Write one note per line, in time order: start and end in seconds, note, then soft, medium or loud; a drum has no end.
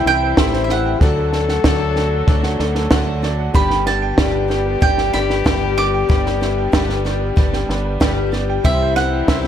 0.00 0.97 C2 medium
0.00 0.97 C3 medium
0.00 0.37 E3 medium
0.00 0.99 E3 medium
0.00 0.04 G3 loud
0.00 0.97 G3 medium
0.00 0.05 C4 loud
0.00 0.38 C4 medium
0.00 0.99 C4 medium
0.00 0.06 E4 loud
0.00 0.38 E4 medium
0.00 1.02 E4 loud
0.00 0.38 G4 medium
0.00 0.06 C5 medium
0.00 0.21 C5 medium
0.00 1.02 D5 medium
0.00 0.07 E5 loud
0.00 0.54 G5 loud
0.04 0.34 C2 medium
0.04 0.27 G3 medium
0.04 0.28 C4 medium
0.04 0.28 E4 medium
0.04 0.28 C5 medium
0.04 0.28 E5 medium
0.04 0.69 E5 medium
0.04 0.64 G5 loud
0.04 snare soft
0.22 0.52 C5 medium
0.37 0.94 A1 loud
0.37 0.69 C3 medium
0.37 0.70 E3 medium
0.37 0.59 G3 medium
0.37 0.60 C4 medium
0.37 0.70 C4 medium
0.37 0.60 E4 medium
0.37 0.69 E4 medium
0.37 1.01 G4 medium
0.37 0.68 G4 medium
0.37 0.60 C5 medium
0.37 0.60 E5 loud
0.37 kick medium
0.37 snare loud
0.53 1.01 C5 medium
0.53 snare soft
0.64 0.70 E5 medium
0.68 0.91 G3 medium
0.68 0.91 C4 medium
0.68 1.02 C4 soft
0.68 0.91 E4 medium
0.68 1.01 E4 soft
0.68 1.01 G4 medium
0.68 0.92 C5 medium
0.68 0.92 E5 medium
0.68 1.01 E5 medium
0.68 2.57 F#5 medium
0.68 snare soft
0.86 1.01 G5 medium
1.00 1.58 D2 loud
1.00 3.51 D2 medium
1.00 3.51 D3 medium
1.00 8.61 D3 medium
1.00 1.33 D3 medium
1.00 1.23 F#3 loud
1.00 1.33 F#3 medium
1.00 3.53 F#3 medium
1.00 1.23 A3 medium
1.00 3.53 A3 medium
1.00 1.34 A3 medium
1.00 1.23 D4 medium
1.00 1.33 D4 medium
1.00 1.65 F#4 medium
1.00 1.32 F#4 medium
1.00 3.23 A4 loud
1.00 1.24 A4 medium
1.00 1.24 D5 loud
1.00 kick loud
1.00 snare soft
1.18 1.79 A4 medium
1.32 1.55 F#3 medium
1.32 1.55 A3 medium
1.32 1.64 A3 soft
1.32 1.55 D4 medium
1.32 1.64 D4 medium
1.32 1.65 F#4 medium
1.32 1.55 A4 medium
1.32 1.55 D5 medium
1.32 snare soft
1.49 2.13 F#5 medium
1.49 snare soft
1.64 2.21 D2 loud
1.64 1.96 D3 medium
1.64 1.87 F#3 loud
1.64 1.96 F#3 medium
1.64 1.87 A3 loud
1.64 1.97 A3 medium
1.64 1.87 D4 loud
1.64 1.96 D4 medium
1.64 1.95 F#4 medium
1.64 1.87 A4 loud
1.64 2.27 D5 medium
1.64 1.88 D5 loud
1.64 kick medium
1.64 snare loud
1.81 2.11 A4 medium
1.95 2.18 F#3 medium
1.95 2.18 A3 medium
1.95 2.27 A3 soft
1.95 2.19 D4 medium
1.95 2.28 D4 medium
1.95 2.28 F#4 medium
1.95 2.60 F#4 medium
1.95 2.19 A4 medium
1.95 2.19 D5 loud
1.95 snare soft
2.13 2.74 A4 medium
2.26 2.56 D2 medium
2.26 2.49 F#3 medium
2.26 2.90 F#3 medium
2.26 2.49 A3 medium
2.26 2.90 A3 medium
2.26 2.50 D4 medium
2.26 2.91 D4 medium
2.26 2.91 F#4 medium
2.26 2.50 A4 medium
2.26 2.58 D5 medium
2.26 2.50 D5 loud
2.26 kick loud
2.26 snare soft
2.43 3.07 F#5 medium
2.43 snare soft
2.59 2.88 D2 medium
2.59 2.81 F#3 medium
2.59 2.82 A3 medium
2.59 2.82 D4 medium
2.59 2.82 A4 medium
2.59 3.21 D5 medium
2.59 2.82 D5 loud
2.59 snare soft
2.75 3.06 A4 medium
2.75 snare soft
2.90 3.48 D2 loud
2.90 3.23 D3 medium
2.90 3.13 F#3 loud
2.90 3.23 F#3 medium
2.90 3.13 A3 loud
2.90 3.23 A3 loud
2.90 3.22 D4 loud
2.90 3.14 D4 loud
2.90 3.55 F#4 medium
2.90 3.21 F#4 loud
2.90 3.14 A4 loud
2.90 3.14 D5 loud
2.90 kick medium
2.90 snare loud
3.07 3.55 A4 medium
3.22 3.45 F#3 medium
3.22 3.45 A3 medium
3.22 3.54 A3 medium
3.22 3.54 D4 soft
3.22 3.46 D4 medium
3.22 3.54 F#4 medium
3.22 3.46 A4 medium
3.22 3.55 D5 medium
3.22 3.46 D5 loud
3.22 snare soft
3.39 3.55 F#5 medium
3.53 6.05 G1 medium
3.53 4.12 G1 medium
3.53 3.86 G2 medium
3.53 6.05 G2 medium
3.53 3.86 D3 medium
3.53 3.77 G3 medium
3.53 3.86 G3 medium
3.53 9.47 G3 medium
3.53 3.77 B3 medium
3.53 3.86 B3 medium
3.53 8.61 B3 medium
3.53 3.77 D4 medium
3.53 3.86 D4 medium
3.53 8.33 G4 loud
3.53 4.18 G4 medium
3.53 3.85 G4 loud
3.53 3.77 B4 medium
3.53 3.78 D5 loud
3.53 3.86 B5 medium
3.53 kick loud
3.53 snare soft
3.70 4.32 B4 medium
3.70 snare soft
3.85 4.08 G3 medium
3.85 4.18 G3 soft
3.85 4.09 B3 medium
3.85 4.17 B3 medium
3.85 4.09 D4 medium
3.85 4.18 D4 medium
3.85 4.18 G4 medium
3.85 4.09 B4 medium
3.85 4.09 D5 medium
3.85 4.82 A5 medium
3.85 snare soft
4.02 4.66 G5 loud
4.17 4.75 G1 loud
4.17 4.50 G2 medium
4.17 4.50 D3 medium
4.17 4.40 G3 loud
4.17 4.49 G3 medium
4.17 4.40 B3 medium
4.17 4.49 B3 medium
4.17 4.40 D4 medium
4.17 4.48 D4 medium
4.17 4.47 G4 medium
4.17 4.41 B4 medium
4.17 4.41 D5 loud
4.17 4.80 D5 medium
4.17 kick medium
4.17 snare loud
4.34 4.64 B4 medium
4.48 4.72 G3 medium
4.48 4.79 G3 soft
4.48 4.72 B3 medium
4.48 4.80 B3 soft
4.48 4.81 D4 medium
4.48 4.72 D4 medium
4.48 4.81 G4 medium
4.48 5.14 G4 medium
4.48 4.73 B4 medium
4.48 4.73 D5 medium
4.48 snare soft
4.66 5.28 B4 medium
4.80 5.10 G1 medium
4.80 5.45 G3 medium
4.80 5.04 G3 medium
4.80 5.04 B3 medium
4.80 5.45 B3 medium
4.80 5.04 D4 medium
4.80 5.45 D4 medium
4.80 5.46 G4 medium
4.80 5.04 B4 medium
4.80 5.13 D5 medium
4.80 5.05 D5 medium
4.80 5.13 G5 loud
4.80 kick loud
4.80 snare soft
4.98 5.62 G5 medium
4.98 snare soft
5.13 5.42 G1 medium
5.13 5.36 G3 medium
5.13 5.36 B3 medium
5.13 5.36 D4 medium
5.13 5.36 B4 medium
5.13 5.77 D5 medium
5.13 5.37 D5 medium
5.13 5.77 B5 loud
5.13 snare soft
5.30 5.61 B4 medium
5.30 snare soft
5.44 6.03 G1 loud
5.44 5.77 G2 medium
5.44 5.77 D3 medium
5.44 5.67 G3 medium
5.44 5.78 G3 medium
5.44 5.67 B3 medium
5.44 5.77 B3 medium
5.44 5.68 D4 medium
5.44 5.76 D4 medium
5.44 6.09 G4 medium
5.44 5.75 G4 medium
5.44 5.68 B4 medium
5.44 5.68 D5 loud
5.44 kick medium
5.44 snare loud
5.62 6.25 B4 medium
5.76 5.99 G3 medium
5.76 6.08 G3 soft
5.76 5.99 B3 medium
5.76 6.08 B3 medium
5.76 6.00 D4 medium
5.76 6.09 G4 soft
5.76 6.00 B4 medium
5.76 6.00 D5 medium
5.76 6.42 D5 medium
5.76 7.65 D6 loud
5.76 snare soft
5.94 6.57 G5 loud
6.08 8.60 G1 medium
6.08 6.66 G1 loud
6.08 8.60 G2 medium
6.08 6.41 G2 medium
6.08 6.41 D3 medium
6.08 6.31 G3 loud
6.08 6.41 G3 medium
6.08 6.31 B3 medium
6.08 6.41 B3 medium
6.08 6.31 D4 medium
6.08 6.40 D4 medium
6.08 6.74 G4 medium
6.08 6.39 G4 medium
6.08 6.32 B4 medium
6.08 6.32 D5 loud
6.08 kick loud
6.08 snare soft
6.26 6.89 B4 medium
6.26 snare soft
6.41 6.63 G3 medium
6.41 6.72 G3 medium
6.41 6.64 B3 medium
6.41 6.73 B3 soft
6.41 6.73 D4 medium
6.41 6.64 D4 medium
6.41 6.73 G4 medium
6.41 6.64 B4 medium
6.41 6.64 E5 medium
6.41 snare soft
6.58 7.21 G5 medium
6.72 7.30 G1 loud
6.72 7.04 G2 medium
6.72 7.05 D3 medium
6.72 6.95 G3 loud
6.72 7.05 G3 medium
6.72 6.96 B3 loud
6.72 7.05 B3 medium
6.72 7.04 D4 loud
6.72 6.96 D4 loud
6.72 7.03 G4 loud
6.72 6.96 B4 loud
6.72 7.36 D5 medium
6.72 6.96 D5 loud
6.72 kick medium
6.72 snare loud
6.89 7.20 B4 medium
6.89 snare soft
7.05 7.27 G3 loud
7.05 7.35 G3 medium
7.05 7.28 B3 medium
7.05 7.36 B3 medium
7.05 7.36 D4 medium
7.05 7.28 D4 medium
7.05 7.37 G4 medium
7.05 7.69 G4 medium
7.05 7.28 B4 medium
7.05 7.28 D5 loud
7.05 snare soft
7.21 7.84 B4 medium
7.36 7.66 G1 medium
7.36 7.99 G3 medium
7.36 7.60 G3 medium
7.36 8.00 B3 medium
7.36 7.60 B3 medium
7.36 8.00 D4 medium
7.36 7.60 D4 medium
7.36 8.00 G4 medium
7.36 7.60 B4 medium
7.36 7.68 D5 medium
7.36 7.61 D5 loud
7.36 kick loud
7.36 snare soft
7.53 8.17 G5 medium
7.53 snare soft
7.68 7.97 G1 medium
7.68 7.91 G3 loud
7.68 7.92 B3 medium
7.68 7.92 D4 medium
7.68 7.92 B4 medium
7.68 8.31 D5 medium
7.68 7.92 D5 loud
7.68 snare soft
7.85 8.15 B4 medium
8.00 8.58 G1 loud
8.00 8.32 G2 medium
8.00 8.32 D3 medium
8.00 8.33 G3 loud
8.00 8.23 G3 loud
8.00 8.32 B3 loud
8.00 8.23 B3 loud
8.00 8.23 D4 loud
8.00 8.32 D4 medium
8.00 8.64 G4 medium
8.00 8.31 G4 loud
8.00 8.24 B4 loud
8.00 8.24 D5 loud
8.00 kick medium
8.00 snare loud
8.17 8.64 B4 medium
8.32 8.55 G3 medium
8.32 8.55 B3 medium
8.32 8.65 B3 soft
8.32 8.64 D4 medium
8.32 8.55 D4 medium
8.32 8.64 G4 medium
8.32 8.55 B4 medium
8.32 8.65 D5 medium
8.32 8.56 D5 loud
8.32 snare soft
8.50 8.65 G5 medium
8.64 9.22 C2 loud
8.64 9.47 C2 medium
8.64 8.96 C3 medium
8.64 9.47 C3 medium
8.64 8.96 E3 medium
8.64 9.47 E3 medium
8.64 8.87 G3 loud
8.64 8.87 C4 loud
8.64 8.97 C4 medium
8.64 9.47 C4 medium
8.64 9.47 E4 loud
8.64 8.87 E4 medium
8.64 8.96 E4 medium
8.64 9.11 G4 medium
8.64 8.95 G4 loud
8.64 8.87 C5 loud
8.64 8.96 E5 loud
8.64 8.88 E5 loud
8.64 kick loud
8.64 snare soft
8.81 9.43 C5 medium
8.96 9.19 G3 medium
8.96 9.19 C4 medium
8.96 9.27 C4 medium
8.96 9.19 E4 medium
8.96 9.28 E4 medium
8.96 9.28 G4 medium
8.96 9.19 C5 medium
8.96 9.20 E5 medium
8.96 9.47 F#5 loud
8.96 snare soft
9.13 9.47 G4 medium
9.28 9.47 C2 loud
9.28 9.47 C3 medium
9.28 9.47 E3 medium
9.28 9.47 G3 loud
9.28 9.47 C4 medium
9.28 9.47 E4 medium
9.28 9.47 E4 loud
9.28 9.47 G4 medium
9.28 9.47 C5 medium
9.28 9.47 E5 medium
9.28 9.47 E5 loud
9.28 kick medium
9.28 snare loud
9.44 snare soft